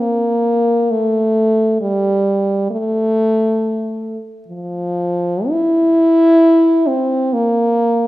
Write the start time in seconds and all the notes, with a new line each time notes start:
0.00 A#3
0.91 A3
1.81 G3
2.71 A3
4.48 F3
5.49 E4
6.87 C4
7.33 A#3